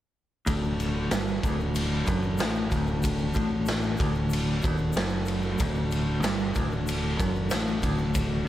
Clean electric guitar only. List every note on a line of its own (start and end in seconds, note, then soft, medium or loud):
0.46 1.10 D2 medium
1.11 1.43 G2 loud
1.44 2.05 D2 medium
2.06 2.38 F#2 medium
2.40 2.69 A2 loud
2.70 3.33 D2 loud
3.35 3.98 A2 loud
4.00 4.63 D2 loud
4.63 4.94 D#2 medium
4.97 5.59 F#2 loud
5.61 6.23 D2 loud
6.23 6.54 G2 loud
6.55 7.18 D2 loud
7.19 7.50 F#2 medium
7.51 7.82 A2 loud
7.82 8.45 D2 loud